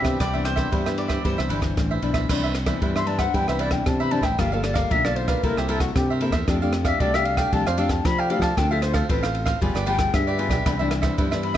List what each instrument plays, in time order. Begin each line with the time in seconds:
Already playing: nylon-string guitar G2 E3 B3 D4, flute G4
0.02 fingered electric bass C3, cavaquinho B4 C5 E5, kick, cross-stick, ride
0.20 fingered electric bass C2, nylon-string guitar C3, cavaquinho E4 B4 C5 E5, mandolin D5, kick, cross-stick, ride
0.34 nylon-string guitar E3 B3 D4, cavaquinho B4 C5 E5
0.44 mandolin C5, muted cavaquinho stroke, cross-stick, ride
0.56 cavaquinho B4 C5 E5, kick, cross-stick, ride
0.71 nylon-string guitar G2 E3 B3 D4, fingered electric bass G2, cavaquinho E4 B4 C5 E5, kick, ride
0.86 nylon-string guitar E3 B3 D4, cavaquinho B4 C5 E5, cross-stick
0.98 mandolin D5, ride
1.08 cavaquinho B4 C5 E5, kick, cross-stick, ride
1.24 fingered electric bass G2, nylon-string guitar C3 E3 B3 D4, cavaquinho E4 B4 C5 E5, mandolin C5, kick, ride
1.38 fingered electric bass C2, cavaquinho B4 C5 E5, cross-stick
1.49 fingered electric bass G1, nylon-string guitar E3 D4, cavaquinho E4 B4 C5 E5, ride
1.61 muted cavaquinho stroke, kick, cross-stick, ride
1.77 fingered electric bass A1, nylon-string guitar G2, kick, cross-stick, ride
1.91 cavaquinho B4 C5 E5
2.02 fingered electric bass B1, nylon-string guitar E3 B3 D4, cavaquinho E4 B4 C5 E5, ride
2.14 cavaquinho B4 C5 E5, kick, cross-stick, ride
2.29 fingered electric bass C2, nylon-string guitar C3 E3 B3 D4, cavaquinho E4 B4 C5 E5, kick, cross-stick, crash
2.43 cavaquinho B4 C5 E5
2.55 muted cavaquinho stroke, cross-stick, ride
2.66 nylon-string guitar E3 B3 D4, cavaquinho B4 C5 E5, kick, cross-stick, ride
2.82 nylon-string guitar G2, fingered electric bass G2, cavaquinho E4 B4 C5 E5, kick, ride
2.96 cavaquinho B4 C5 E5, flute C6, cross-stick
3.06 nylon-string guitar E3 B3 D4, flute A5, ride
3.19 cavaquinho B4 C5 E5, flute F#5, kick, cross-stick, ride
3.34 fingered electric bass G2, nylon-string guitar C3 E3 B3 D4, cavaquinho E4 B4 C5 E5, flute G5, kick, ride
3.48 fingered electric bass C2, flute B4, cavaquinho B4 C5 E5, cross-stick
3.59 cavaquinho E4 B4 C5 E5, flute D5, ride
3.71 nylon-string guitar E3 B3 D4, flute G5, muted cavaquinho stroke, kick, cross-stick, ride
3.86 nylon-string guitar G2, fingered electric bass C3, flute A5, kick, cross-stick, ride
4.00 cavaquinho B4 C5 E5, flute B5
4.11 nylon-string guitar E3 B3 D4, cavaquinho E4 B4 C5 E5, flute A5, ride
4.21 fingered electric bass A1, cavaquinho B4 C5 E5, flute G5, kick, cross-stick, ride
4.38 fingered electric bass G1, nylon-string guitar G3 A#3 F4 A4, cavaquinho G4 A#4 D5 F5, flute F5, kick, cross-stick, ride
4.52 nylon-string guitar A#3 F4 A4, flute A4, cavaquinho A#4 D5 F5
4.63 flute D5, muted cavaquinho stroke, cross-stick, ride
4.74 cavaquinho A#4 D5 F5, flute F5, kick, cross-stick, ride
4.90 fingered electric bass B1, nylon-string guitar D3 A#3 F4 A4, cavaquinho G4 A#4 D5 F5, flute E5, kick, ride
5.04 nylon-string guitar A#3 F4 A4, cavaquinho A#4 D5 F5, flute D5, cross-stick
5.16 flute C5, ride
5.28 cavaquinho A#4 D5 F5, flute B4, kick, cross-stick, ride
5.43 fingered electric bass C2, nylon-string guitar C3 A#3 E4 A4, cavaquinho E4 A#4 C5 E5, flute A#4, kick, ride
5.57 fingered electric bass C2, flute G4, cavaquinho A#4 C5 E5, cross-stick
5.68 nylon-string guitar A#3 E4 A4, cavaquinho E4 A#4 C5 E5, flute A4, ride
5.80 flute F#4, muted cavaquinho stroke, kick, cross-stick, ride
5.96 nylon-string guitar G2, fingered electric bass C3, flute G4, kick, cross-stick, ride
6.10 cavaquinho A#4 C5 E5
6.21 nylon-string guitar A#3 E4 A4, cavaquinho E4 A#4 C5 E5, ride
6.30 fingered electric bass E2, cavaquinho A#4 C5 E5, kick, cross-stick, ride
6.48 fingered electric bass F2, nylon-string guitar F3 A3 D4 G4, cavaquinho D4 A4 D5 F5, kick, cross-stick, ride
6.62 nylon-string guitar A3 D4 G4, cavaquinho A4 D5 F5
6.73 muted cavaquinho stroke, cross-stick, ride
6.85 cavaquinho A4 D5 F5, flute E5, kick, cross-stick, ride
7.00 fingered electric bass C2, nylon-string guitar C3 A3 D4 G4, cavaquinho D4 A4 D5 F5, flute D5, kick, ride
7.14 nylon-string guitar A3 D4 G4, cavaquinho A4 D5 F5, flute E5, cross-stick
7.25 flute F5, ride
7.37 cavaquinho A4 D5 F5, flute G5, kick, cross-stick, ride
7.52 fingered electric bass C2, nylon-string guitar F3 A3 D4 G4, cavaquinho D4 A4 D5 F5, flute A5, kick, ride
7.66 fingered electric bass F2, cavaquinho A4 D5 F5, flute C5, cross-stick
7.77 nylon-string guitar A3 D4 G4, cavaquinho D4 A4 D5 F5, flute F5, ride
7.89 flute A5, muted cavaquinho stroke, kick, cross-stick, ride
8.05 nylon-string guitar C3, fingered electric bass F3, flute B5, kick, cross-stick, ride
8.18 cavaquinho A4 D5 F5, flute G5
8.30 nylon-string guitar A3 D4 G4, cavaquinho D4 A4 D5 F5, flute F5, ride
8.39 fingered electric bass F3, cavaquinho A4 D5 F5, flute A5, kick, cross-stick, ride
8.57 fingered electric bass D2, nylon-string guitar D3 C4 F4 A4, cavaquinho D4 A4 C5 F5, flute G5, kick, cross-stick, ride
8.71 nylon-string guitar C4 F4 A4, cavaquinho A4 C5 F5, flute E5
8.82 flute C5, muted cavaquinho stroke, cross-stick, ride
8.93 flute A4, cavaquinho A4 C5 F5, kick, cross-stick, ride
9.09 fingered electric bass A1, nylon-string guitar A2 C4 F4 A4, cavaquinho D4 A4 C5 F5, flute B4, kick, ride
9.23 cavaquinho A4 C5 F5, cross-stick
9.35 ride
9.46 cavaquinho A4 C5 F5, kick, cross-stick, ride
9.61 fingered electric bass G1, nylon-string guitar G3 B3 F4 G#4, cavaquinho F4 G4 B4 D5, kick, ride
9.75 fingered electric bass G1, cavaquinho G4 B4 D5, cross-stick
9.86 nylon-string guitar B3 F4 G#4, cavaquinho F4 G4 B4 D5, flute G5, ride
9.98 muted cavaquinho stroke, kick, cross-stick, ride
10.13 fingered electric bass G2, nylon-string guitar D3, flute E5, kick, cross-stick, ride
10.27 cavaquinho G4 B4 D5
10.38 nylon-string guitar B3 F4 G#4, cavaquinho F4 G4 B4 D5, ride
10.48 fingered electric bass B1, cavaquinho G4 B4 D5, kick, cross-stick, ride
10.65 fingered electric bass C2, nylon-string guitar C3 E3 B3 D4, cavaquinho E4 B4 C5 E5, kick, cross-stick, ride
10.79 nylon-string guitar E3 B3 D4, cavaquinho B4 C5 E5
10.90 muted cavaquinho stroke, cross-stick, ride
11.02 cavaquinho B4 C5 E5, kick, cross-stick, ride
11.18 nylon-string guitar G2 E3 B3 D4, fingered electric bass G2, cavaquinho E4 B4 C5 E5, kick, ride
11.31 nylon-string guitar E3 B3 D4, cavaquinho B4 C5 E5, cross-stick
11.43 flute B5, ride
11.54 cavaquinho E5